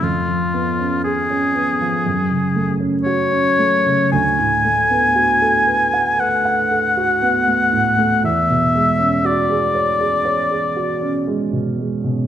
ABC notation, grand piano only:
X:1
M:4/4
L:1/16
Q:1/4=59
K:Bdor
V:1 name="Grand piano"
^E,, ^E, B, C G C B, E, F,, C, A, C F C A, C, | D,, A,, A, B, F A B f B f A F B, A, A,, A, | E,, B,, G, C F G c G c G F C G, B,, G, B,, |]